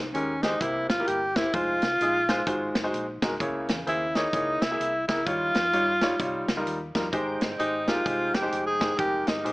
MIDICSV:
0, 0, Header, 1, 6, 480
1, 0, Start_track
1, 0, Tempo, 465477
1, 1587, Time_signature, 4, 2, 24, 8
1, 9824, End_track
2, 0, Start_track
2, 0, Title_t, "Tonewheel organ"
2, 0, Program_c, 0, 16
2, 7346, Note_on_c, 0, 63, 72
2, 7346, Note_on_c, 0, 79, 66
2, 7349, Note_on_c, 0, 72, 85
2, 7352, Note_on_c, 0, 56, 79
2, 9230, Note_off_c, 0, 63, 0
2, 9230, Note_off_c, 0, 79, 0
2, 9231, Note_off_c, 0, 72, 0
2, 9233, Note_off_c, 0, 56, 0
2, 9252, Note_on_c, 0, 67, 59
2, 9254, Note_on_c, 0, 63, 55
2, 9254, Note_on_c, 0, 70, 71
2, 9255, Note_on_c, 0, 56, 61
2, 9824, Note_off_c, 0, 56, 0
2, 9824, Note_off_c, 0, 63, 0
2, 9824, Note_off_c, 0, 67, 0
2, 9824, Note_off_c, 0, 70, 0
2, 9824, End_track
3, 0, Start_track
3, 0, Title_t, "Grand piano"
3, 0, Program_c, 1, 0
3, 0, Note_on_c, 1, 44, 66
3, 156, Note_on_c, 1, 56, 66
3, 156, Note_on_c, 1, 67, 57
3, 158, Note_on_c, 1, 63, 57
3, 160, Note_on_c, 1, 70, 72
3, 325, Note_off_c, 1, 56, 0
3, 325, Note_off_c, 1, 67, 0
3, 326, Note_off_c, 1, 63, 0
3, 327, Note_off_c, 1, 70, 0
3, 406, Note_off_c, 1, 44, 0
3, 451, Note_on_c, 1, 56, 72
3, 451, Note_on_c, 1, 72, 78
3, 452, Note_on_c, 1, 67, 67
3, 453, Note_on_c, 1, 63, 61
3, 555, Note_off_c, 1, 56, 0
3, 555, Note_off_c, 1, 72, 0
3, 556, Note_off_c, 1, 63, 0
3, 556, Note_off_c, 1, 67, 0
3, 637, Note_on_c, 1, 64, 55
3, 638, Note_on_c, 1, 67, 60
3, 641, Note_on_c, 1, 58, 65
3, 642, Note_on_c, 1, 48, 51
3, 643, Note_on_c, 1, 72, 69
3, 892, Note_off_c, 1, 64, 0
3, 892, Note_off_c, 1, 67, 0
3, 894, Note_off_c, 1, 58, 0
3, 895, Note_off_c, 1, 72, 0
3, 1029, Note_on_c, 1, 58, 66
3, 1031, Note_on_c, 1, 64, 68
3, 1031, Note_on_c, 1, 70, 81
3, 1034, Note_on_c, 1, 67, 59
3, 1227, Note_off_c, 1, 58, 0
3, 1228, Note_off_c, 1, 64, 0
3, 1228, Note_off_c, 1, 70, 0
3, 1229, Note_off_c, 1, 67, 0
3, 1368, Note_off_c, 1, 48, 0
3, 1416, Note_on_c, 1, 58, 61
3, 1417, Note_on_c, 1, 64, 55
3, 1418, Note_on_c, 1, 72, 67
3, 1419, Note_on_c, 1, 67, 54
3, 1518, Note_off_c, 1, 58, 0
3, 1518, Note_off_c, 1, 64, 0
3, 1519, Note_off_c, 1, 67, 0
3, 1519, Note_off_c, 1, 72, 0
3, 1589, Note_on_c, 1, 63, 57
3, 1590, Note_on_c, 1, 65, 59
3, 1591, Note_on_c, 1, 56, 67
3, 1592, Note_on_c, 1, 72, 81
3, 1915, Note_off_c, 1, 63, 0
3, 1916, Note_off_c, 1, 56, 0
3, 1916, Note_off_c, 1, 65, 0
3, 1917, Note_off_c, 1, 72, 0
3, 2080, Note_on_c, 1, 65, 59
3, 2081, Note_on_c, 1, 63, 67
3, 2082, Note_on_c, 1, 56, 66
3, 2085, Note_on_c, 1, 68, 77
3, 2247, Note_off_c, 1, 63, 0
3, 2247, Note_off_c, 1, 65, 0
3, 2248, Note_off_c, 1, 56, 0
3, 2249, Note_off_c, 1, 68, 0
3, 2360, Note_on_c, 1, 63, 70
3, 2361, Note_on_c, 1, 65, 81
3, 2362, Note_on_c, 1, 56, 90
3, 2366, Note_on_c, 1, 72, 89
3, 2470, Note_off_c, 1, 63, 0
3, 2470, Note_off_c, 1, 65, 0
3, 2471, Note_off_c, 1, 56, 0
3, 2473, Note_off_c, 1, 72, 0
3, 2543, Note_on_c, 1, 44, 67
3, 2543, Note_on_c, 1, 66, 65
3, 2544, Note_on_c, 1, 63, 74
3, 2546, Note_on_c, 1, 56, 84
3, 2547, Note_on_c, 1, 72, 88
3, 2805, Note_off_c, 1, 63, 0
3, 2805, Note_off_c, 1, 66, 0
3, 2806, Note_off_c, 1, 56, 0
3, 2807, Note_off_c, 1, 72, 0
3, 2923, Note_on_c, 1, 56, 82
3, 2925, Note_on_c, 1, 66, 75
3, 2926, Note_on_c, 1, 63, 84
3, 2928, Note_on_c, 1, 72, 84
3, 3134, Note_off_c, 1, 56, 0
3, 3135, Note_off_c, 1, 63, 0
3, 3135, Note_off_c, 1, 66, 0
3, 3136, Note_off_c, 1, 72, 0
3, 3279, Note_off_c, 1, 44, 0
3, 3331, Note_on_c, 1, 66, 65
3, 3332, Note_on_c, 1, 70, 82
3, 3333, Note_on_c, 1, 56, 77
3, 3333, Note_on_c, 1, 63, 62
3, 3435, Note_off_c, 1, 66, 0
3, 3436, Note_off_c, 1, 56, 0
3, 3436, Note_off_c, 1, 63, 0
3, 3436, Note_off_c, 1, 70, 0
3, 3509, Note_on_c, 1, 64, 76
3, 3511, Note_on_c, 1, 58, 70
3, 3511, Note_on_c, 1, 73, 78
3, 3512, Note_on_c, 1, 68, 64
3, 3513, Note_on_c, 1, 49, 76
3, 3835, Note_off_c, 1, 64, 0
3, 3836, Note_off_c, 1, 58, 0
3, 3836, Note_off_c, 1, 73, 0
3, 3837, Note_off_c, 1, 68, 0
3, 3986, Note_on_c, 1, 58, 62
3, 3987, Note_on_c, 1, 72, 73
3, 3988, Note_on_c, 1, 64, 67
3, 3994, Note_on_c, 1, 68, 69
3, 4160, Note_off_c, 1, 58, 0
3, 4160, Note_off_c, 1, 72, 0
3, 4161, Note_off_c, 1, 64, 0
3, 4164, Note_off_c, 1, 68, 0
3, 4244, Note_off_c, 1, 49, 0
3, 4287, Note_on_c, 1, 64, 69
3, 4290, Note_on_c, 1, 58, 74
3, 4292, Note_on_c, 1, 73, 76
3, 4294, Note_on_c, 1, 68, 62
3, 4393, Note_off_c, 1, 64, 0
3, 4395, Note_off_c, 1, 58, 0
3, 4396, Note_off_c, 1, 73, 0
3, 4397, Note_off_c, 1, 68, 0
3, 4470, Note_on_c, 1, 73, 70
3, 4471, Note_on_c, 1, 68, 64
3, 4472, Note_on_c, 1, 64, 60
3, 4474, Note_on_c, 1, 58, 69
3, 4728, Note_off_c, 1, 73, 0
3, 4729, Note_off_c, 1, 64, 0
3, 4729, Note_off_c, 1, 68, 0
3, 4730, Note_off_c, 1, 58, 0
3, 4860, Note_on_c, 1, 58, 61
3, 4861, Note_on_c, 1, 76, 74
3, 4863, Note_on_c, 1, 68, 68
3, 4864, Note_on_c, 1, 64, 64
3, 5062, Note_off_c, 1, 58, 0
3, 5063, Note_off_c, 1, 76, 0
3, 5064, Note_off_c, 1, 64, 0
3, 5064, Note_off_c, 1, 68, 0
3, 5255, Note_on_c, 1, 70, 75
3, 5256, Note_on_c, 1, 58, 66
3, 5256, Note_on_c, 1, 68, 54
3, 5260, Note_on_c, 1, 64, 51
3, 5357, Note_off_c, 1, 70, 0
3, 5358, Note_off_c, 1, 58, 0
3, 5358, Note_off_c, 1, 68, 0
3, 5360, Note_off_c, 1, 64, 0
3, 5440, Note_on_c, 1, 51, 60
3, 5440, Note_on_c, 1, 63, 65
3, 5441, Note_on_c, 1, 65, 60
3, 5441, Note_on_c, 1, 73, 74
3, 5442, Note_on_c, 1, 55, 63
3, 5761, Note_off_c, 1, 63, 0
3, 5762, Note_off_c, 1, 55, 0
3, 5762, Note_off_c, 1, 65, 0
3, 5762, Note_off_c, 1, 73, 0
3, 5913, Note_on_c, 1, 73, 75
3, 5915, Note_on_c, 1, 63, 67
3, 5916, Note_on_c, 1, 55, 68
3, 5919, Note_on_c, 1, 65, 61
3, 6084, Note_off_c, 1, 73, 0
3, 6085, Note_off_c, 1, 55, 0
3, 6085, Note_off_c, 1, 63, 0
3, 6087, Note_off_c, 1, 65, 0
3, 6168, Note_off_c, 1, 51, 0
3, 6211, Note_on_c, 1, 63, 81
3, 6213, Note_on_c, 1, 65, 71
3, 6213, Note_on_c, 1, 73, 86
3, 6214, Note_on_c, 1, 55, 83
3, 6315, Note_off_c, 1, 63, 0
3, 6317, Note_off_c, 1, 55, 0
3, 6317, Note_off_c, 1, 65, 0
3, 6317, Note_off_c, 1, 73, 0
3, 6385, Note_on_c, 1, 55, 86
3, 6388, Note_on_c, 1, 63, 69
3, 6392, Note_on_c, 1, 65, 77
3, 6393, Note_on_c, 1, 73, 78
3, 6646, Note_off_c, 1, 55, 0
3, 6648, Note_off_c, 1, 63, 0
3, 6650, Note_off_c, 1, 65, 0
3, 6650, Note_off_c, 1, 73, 0
3, 6773, Note_on_c, 1, 65, 70
3, 6776, Note_on_c, 1, 63, 72
3, 6777, Note_on_c, 1, 55, 77
3, 6777, Note_on_c, 1, 70, 84
3, 6979, Note_off_c, 1, 65, 0
3, 6981, Note_off_c, 1, 55, 0
3, 6981, Note_off_c, 1, 63, 0
3, 6981, Note_off_c, 1, 70, 0
3, 7166, Note_on_c, 1, 55, 67
3, 7169, Note_on_c, 1, 65, 65
3, 7170, Note_on_c, 1, 63, 59
3, 7173, Note_on_c, 1, 70, 87
3, 7273, Note_off_c, 1, 55, 0
3, 7275, Note_off_c, 1, 65, 0
3, 7276, Note_off_c, 1, 63, 0
3, 7277, Note_off_c, 1, 70, 0
3, 7354, Note_on_c, 1, 67, 74
3, 7355, Note_on_c, 1, 44, 67
3, 7358, Note_on_c, 1, 56, 84
3, 7358, Note_on_c, 1, 72, 90
3, 7359, Note_on_c, 1, 63, 62
3, 7679, Note_off_c, 1, 67, 0
3, 7680, Note_off_c, 1, 56, 0
3, 7680, Note_off_c, 1, 72, 0
3, 7681, Note_off_c, 1, 63, 0
3, 7834, Note_on_c, 1, 67, 61
3, 7835, Note_on_c, 1, 72, 67
3, 7836, Note_on_c, 1, 56, 66
3, 7836, Note_on_c, 1, 63, 58
3, 8005, Note_off_c, 1, 63, 0
3, 8005, Note_off_c, 1, 67, 0
3, 8005, Note_off_c, 1, 72, 0
3, 8006, Note_off_c, 1, 56, 0
3, 8086, Note_off_c, 1, 44, 0
3, 8123, Note_on_c, 1, 67, 66
3, 8125, Note_on_c, 1, 70, 73
3, 8126, Note_on_c, 1, 56, 70
3, 8126, Note_on_c, 1, 63, 59
3, 8232, Note_off_c, 1, 67, 0
3, 8233, Note_off_c, 1, 56, 0
3, 8233, Note_off_c, 1, 70, 0
3, 8234, Note_off_c, 1, 63, 0
3, 8302, Note_on_c, 1, 56, 67
3, 8302, Note_on_c, 1, 67, 60
3, 8305, Note_on_c, 1, 63, 61
3, 8305, Note_on_c, 1, 72, 71
3, 8565, Note_off_c, 1, 56, 0
3, 8565, Note_off_c, 1, 67, 0
3, 8567, Note_off_c, 1, 63, 0
3, 8567, Note_off_c, 1, 72, 0
3, 8685, Note_on_c, 1, 56, 71
3, 8685, Note_on_c, 1, 67, 69
3, 8686, Note_on_c, 1, 72, 77
3, 8687, Note_on_c, 1, 63, 67
3, 8896, Note_off_c, 1, 56, 0
3, 8896, Note_off_c, 1, 67, 0
3, 8896, Note_off_c, 1, 72, 0
3, 8897, Note_off_c, 1, 63, 0
3, 9073, Note_on_c, 1, 56, 58
3, 9078, Note_on_c, 1, 67, 53
3, 9078, Note_on_c, 1, 72, 62
3, 9081, Note_on_c, 1, 63, 53
3, 9187, Note_off_c, 1, 56, 0
3, 9190, Note_off_c, 1, 67, 0
3, 9190, Note_off_c, 1, 72, 0
3, 9191, Note_off_c, 1, 63, 0
3, 9260, Note_on_c, 1, 67, 59
3, 9261, Note_on_c, 1, 70, 67
3, 9263, Note_on_c, 1, 56, 68
3, 9264, Note_on_c, 1, 63, 65
3, 9592, Note_off_c, 1, 67, 0
3, 9593, Note_off_c, 1, 56, 0
3, 9593, Note_off_c, 1, 70, 0
3, 9594, Note_off_c, 1, 63, 0
3, 9740, Note_on_c, 1, 56, 65
3, 9740, Note_on_c, 1, 67, 62
3, 9744, Note_on_c, 1, 63, 65
3, 9746, Note_on_c, 1, 72, 74
3, 9824, Note_off_c, 1, 56, 0
3, 9824, Note_off_c, 1, 63, 0
3, 9824, Note_off_c, 1, 67, 0
3, 9824, Note_off_c, 1, 72, 0
3, 9824, End_track
4, 0, Start_track
4, 0, Title_t, "Tenor saxophone"
4, 0, Program_c, 2, 66
4, 138, Note_on_c, 2, 61, 77
4, 436, Note_on_c, 2, 63, 85
4, 452, Note_off_c, 2, 61, 0
4, 630, Note_on_c, 2, 64, 95
4, 646, Note_off_c, 2, 63, 0
4, 911, Note_off_c, 2, 64, 0
4, 918, Note_on_c, 2, 65, 82
4, 1108, Note_on_c, 2, 67, 94
4, 1123, Note_off_c, 2, 65, 0
4, 1402, Note_on_c, 2, 64, 85
4, 1417, Note_off_c, 2, 67, 0
4, 1585, Note_on_c, 2, 65, 109
4, 1601, Note_off_c, 2, 64, 0
4, 3026, Note_off_c, 2, 65, 0
4, 4004, Note_on_c, 2, 64, 98
4, 4284, Note_on_c, 2, 63, 93
4, 4300, Note_off_c, 2, 64, 0
4, 4763, Note_on_c, 2, 64, 90
4, 4779, Note_off_c, 2, 63, 0
4, 5229, Note_off_c, 2, 64, 0
4, 5235, Note_on_c, 2, 64, 89
4, 5423, Note_on_c, 2, 65, 111
4, 5438, Note_off_c, 2, 64, 0
4, 6866, Note_off_c, 2, 65, 0
4, 7825, Note_on_c, 2, 63, 82
4, 8129, Note_on_c, 2, 65, 86
4, 8145, Note_off_c, 2, 63, 0
4, 8605, Note_on_c, 2, 67, 99
4, 8621, Note_off_c, 2, 65, 0
4, 8930, Note_off_c, 2, 67, 0
4, 8936, Note_on_c, 2, 68, 81
4, 9246, Note_off_c, 2, 68, 0
4, 9270, Note_on_c, 2, 67, 96
4, 9565, Note_on_c, 2, 63, 77
4, 9581, Note_off_c, 2, 67, 0
4, 9824, Note_off_c, 2, 63, 0
4, 9824, End_track
5, 0, Start_track
5, 0, Title_t, "Fingered electric bass"
5, 0, Program_c, 3, 33
5, 0, Note_on_c, 3, 36, 75
5, 118, Note_off_c, 3, 36, 0
5, 150, Note_on_c, 3, 39, 79
5, 557, Note_off_c, 3, 39, 0
5, 627, Note_on_c, 3, 36, 81
5, 878, Note_off_c, 3, 36, 0
5, 924, Note_on_c, 3, 32, 75
5, 1080, Note_off_c, 3, 32, 0
5, 1111, Note_on_c, 3, 31, 84
5, 1517, Note_off_c, 3, 31, 0
5, 1588, Note_on_c, 3, 29, 93
5, 1838, Note_off_c, 3, 29, 0
5, 1886, Note_on_c, 3, 36, 83
5, 2042, Note_off_c, 3, 36, 0
5, 2069, Note_on_c, 3, 34, 84
5, 2476, Note_off_c, 3, 34, 0
5, 2545, Note_on_c, 3, 32, 78
5, 2796, Note_off_c, 3, 32, 0
5, 2845, Note_on_c, 3, 30, 83
5, 3001, Note_off_c, 3, 30, 0
5, 3033, Note_on_c, 3, 34, 90
5, 3281, Note_off_c, 3, 34, 0
5, 3322, Note_on_c, 3, 36, 91
5, 3479, Note_off_c, 3, 36, 0
5, 3511, Note_on_c, 3, 37, 85
5, 3760, Note_off_c, 3, 37, 0
5, 3803, Note_on_c, 3, 40, 84
5, 3960, Note_off_c, 3, 40, 0
5, 3991, Note_on_c, 3, 39, 83
5, 4397, Note_off_c, 3, 39, 0
5, 4466, Note_on_c, 3, 37, 77
5, 4717, Note_off_c, 3, 37, 0
5, 4762, Note_on_c, 3, 36, 67
5, 4920, Note_off_c, 3, 36, 0
5, 4950, Note_on_c, 3, 36, 90
5, 5200, Note_off_c, 3, 36, 0
5, 5250, Note_on_c, 3, 37, 69
5, 5404, Note_off_c, 3, 37, 0
5, 5431, Note_on_c, 3, 39, 88
5, 5680, Note_off_c, 3, 39, 0
5, 5727, Note_on_c, 3, 41, 67
5, 5882, Note_off_c, 3, 41, 0
5, 5910, Note_on_c, 3, 43, 85
5, 6317, Note_off_c, 3, 43, 0
5, 6388, Note_on_c, 3, 36, 81
5, 6639, Note_off_c, 3, 36, 0
5, 6690, Note_on_c, 3, 37, 79
5, 6844, Note_off_c, 3, 37, 0
5, 6871, Note_on_c, 3, 39, 83
5, 7120, Note_off_c, 3, 39, 0
5, 7170, Note_on_c, 3, 41, 65
5, 7324, Note_off_c, 3, 41, 0
5, 7351, Note_on_c, 3, 32, 98
5, 7601, Note_off_c, 3, 32, 0
5, 7652, Note_on_c, 3, 31, 75
5, 7806, Note_off_c, 3, 31, 0
5, 7837, Note_on_c, 3, 32, 72
5, 8241, Note_off_c, 3, 32, 0
5, 8311, Note_on_c, 3, 36, 77
5, 8561, Note_off_c, 3, 36, 0
5, 8611, Note_on_c, 3, 29, 81
5, 8765, Note_off_c, 3, 29, 0
5, 8792, Note_on_c, 3, 29, 88
5, 9088, Note_off_c, 3, 29, 0
5, 9088, Note_on_c, 3, 31, 73
5, 9244, Note_off_c, 3, 31, 0
5, 9268, Note_on_c, 3, 29, 94
5, 9519, Note_off_c, 3, 29, 0
5, 9565, Note_on_c, 3, 31, 88
5, 9722, Note_off_c, 3, 31, 0
5, 9752, Note_on_c, 3, 34, 79
5, 9824, Note_off_c, 3, 34, 0
5, 9824, End_track
6, 0, Start_track
6, 0, Title_t, "Drums"
6, 150, Note_on_c, 9, 42, 75
6, 253, Note_off_c, 9, 42, 0
6, 442, Note_on_c, 9, 42, 56
6, 444, Note_on_c, 9, 38, 85
6, 545, Note_off_c, 9, 42, 0
6, 547, Note_off_c, 9, 38, 0
6, 627, Note_on_c, 9, 36, 93
6, 637, Note_on_c, 9, 42, 86
6, 730, Note_off_c, 9, 36, 0
6, 740, Note_off_c, 9, 42, 0
6, 925, Note_on_c, 9, 38, 109
6, 925, Note_on_c, 9, 42, 60
6, 1028, Note_off_c, 9, 38, 0
6, 1028, Note_off_c, 9, 42, 0
6, 1108, Note_on_c, 9, 42, 85
6, 1212, Note_off_c, 9, 42, 0
6, 1402, Note_on_c, 9, 36, 83
6, 1404, Note_on_c, 9, 38, 104
6, 1405, Note_on_c, 9, 42, 70
6, 1505, Note_off_c, 9, 36, 0
6, 1508, Note_off_c, 9, 38, 0
6, 1508, Note_off_c, 9, 42, 0
6, 1586, Note_on_c, 9, 36, 106
6, 1586, Note_on_c, 9, 42, 71
6, 1689, Note_off_c, 9, 36, 0
6, 1689, Note_off_c, 9, 42, 0
6, 1874, Note_on_c, 9, 42, 75
6, 1885, Note_on_c, 9, 38, 95
6, 1978, Note_off_c, 9, 42, 0
6, 1988, Note_off_c, 9, 38, 0
6, 2069, Note_on_c, 9, 42, 81
6, 2172, Note_off_c, 9, 42, 0
6, 2358, Note_on_c, 9, 42, 57
6, 2360, Note_on_c, 9, 38, 94
6, 2461, Note_off_c, 9, 42, 0
6, 2463, Note_off_c, 9, 38, 0
6, 2546, Note_on_c, 9, 36, 99
6, 2551, Note_on_c, 9, 42, 90
6, 2649, Note_off_c, 9, 36, 0
6, 2654, Note_off_c, 9, 42, 0
6, 2839, Note_on_c, 9, 38, 107
6, 2840, Note_on_c, 9, 42, 68
6, 2942, Note_off_c, 9, 38, 0
6, 2943, Note_off_c, 9, 42, 0
6, 3030, Note_on_c, 9, 42, 82
6, 3133, Note_off_c, 9, 42, 0
6, 3324, Note_on_c, 9, 36, 94
6, 3325, Note_on_c, 9, 38, 107
6, 3325, Note_on_c, 9, 42, 60
6, 3427, Note_off_c, 9, 36, 0
6, 3428, Note_off_c, 9, 38, 0
6, 3428, Note_off_c, 9, 42, 0
6, 3509, Note_on_c, 9, 36, 92
6, 3512, Note_on_c, 9, 42, 73
6, 3612, Note_off_c, 9, 36, 0
6, 3615, Note_off_c, 9, 42, 0
6, 3800, Note_on_c, 9, 42, 75
6, 3810, Note_on_c, 9, 38, 103
6, 3903, Note_off_c, 9, 42, 0
6, 3914, Note_off_c, 9, 38, 0
6, 3992, Note_on_c, 9, 42, 78
6, 4095, Note_off_c, 9, 42, 0
6, 4281, Note_on_c, 9, 42, 50
6, 4283, Note_on_c, 9, 38, 76
6, 4384, Note_off_c, 9, 42, 0
6, 4386, Note_off_c, 9, 38, 0
6, 4467, Note_on_c, 9, 36, 102
6, 4474, Note_on_c, 9, 42, 85
6, 4570, Note_off_c, 9, 36, 0
6, 4578, Note_off_c, 9, 42, 0
6, 4763, Note_on_c, 9, 38, 105
6, 4764, Note_on_c, 9, 42, 64
6, 4866, Note_off_c, 9, 38, 0
6, 4867, Note_off_c, 9, 42, 0
6, 4956, Note_on_c, 9, 42, 87
6, 5059, Note_off_c, 9, 42, 0
6, 5247, Note_on_c, 9, 36, 94
6, 5250, Note_on_c, 9, 38, 106
6, 5250, Note_on_c, 9, 42, 59
6, 5350, Note_off_c, 9, 36, 0
6, 5353, Note_off_c, 9, 38, 0
6, 5353, Note_off_c, 9, 42, 0
6, 5430, Note_on_c, 9, 36, 103
6, 5434, Note_on_c, 9, 42, 70
6, 5533, Note_off_c, 9, 36, 0
6, 5537, Note_off_c, 9, 42, 0
6, 5718, Note_on_c, 9, 42, 71
6, 5728, Note_on_c, 9, 38, 105
6, 5821, Note_off_c, 9, 42, 0
6, 5831, Note_off_c, 9, 38, 0
6, 5911, Note_on_c, 9, 42, 78
6, 6014, Note_off_c, 9, 42, 0
6, 6200, Note_on_c, 9, 42, 56
6, 6202, Note_on_c, 9, 38, 79
6, 6303, Note_off_c, 9, 42, 0
6, 6305, Note_off_c, 9, 38, 0
6, 6389, Note_on_c, 9, 36, 101
6, 6396, Note_on_c, 9, 42, 87
6, 6493, Note_off_c, 9, 36, 0
6, 6499, Note_off_c, 9, 42, 0
6, 6687, Note_on_c, 9, 38, 104
6, 6688, Note_on_c, 9, 42, 71
6, 6790, Note_off_c, 9, 38, 0
6, 6791, Note_off_c, 9, 42, 0
6, 6875, Note_on_c, 9, 42, 89
6, 6978, Note_off_c, 9, 42, 0
6, 7167, Note_on_c, 9, 36, 89
6, 7171, Note_on_c, 9, 38, 103
6, 7171, Note_on_c, 9, 42, 58
6, 7270, Note_off_c, 9, 36, 0
6, 7274, Note_off_c, 9, 38, 0
6, 7274, Note_off_c, 9, 42, 0
6, 7351, Note_on_c, 9, 36, 100
6, 7351, Note_on_c, 9, 42, 69
6, 7454, Note_off_c, 9, 36, 0
6, 7454, Note_off_c, 9, 42, 0
6, 7640, Note_on_c, 9, 42, 69
6, 7651, Note_on_c, 9, 38, 106
6, 7743, Note_off_c, 9, 42, 0
6, 7754, Note_off_c, 9, 38, 0
6, 7832, Note_on_c, 9, 42, 75
6, 7935, Note_off_c, 9, 42, 0
6, 8121, Note_on_c, 9, 42, 47
6, 8123, Note_on_c, 9, 38, 86
6, 8224, Note_off_c, 9, 42, 0
6, 8226, Note_off_c, 9, 38, 0
6, 8310, Note_on_c, 9, 36, 106
6, 8318, Note_on_c, 9, 42, 81
6, 8413, Note_off_c, 9, 36, 0
6, 8421, Note_off_c, 9, 42, 0
6, 8605, Note_on_c, 9, 38, 110
6, 8606, Note_on_c, 9, 42, 66
6, 8708, Note_off_c, 9, 38, 0
6, 8709, Note_off_c, 9, 42, 0
6, 8790, Note_on_c, 9, 42, 88
6, 8893, Note_off_c, 9, 42, 0
6, 9085, Note_on_c, 9, 36, 81
6, 9086, Note_on_c, 9, 38, 106
6, 9086, Note_on_c, 9, 42, 60
6, 9188, Note_off_c, 9, 36, 0
6, 9189, Note_off_c, 9, 38, 0
6, 9189, Note_off_c, 9, 42, 0
6, 9269, Note_on_c, 9, 36, 110
6, 9271, Note_on_c, 9, 42, 67
6, 9372, Note_off_c, 9, 36, 0
6, 9375, Note_off_c, 9, 42, 0
6, 9557, Note_on_c, 9, 42, 79
6, 9568, Note_on_c, 9, 38, 100
6, 9661, Note_off_c, 9, 42, 0
6, 9671, Note_off_c, 9, 38, 0
6, 9751, Note_on_c, 9, 42, 78
6, 9824, Note_off_c, 9, 42, 0
6, 9824, End_track
0, 0, End_of_file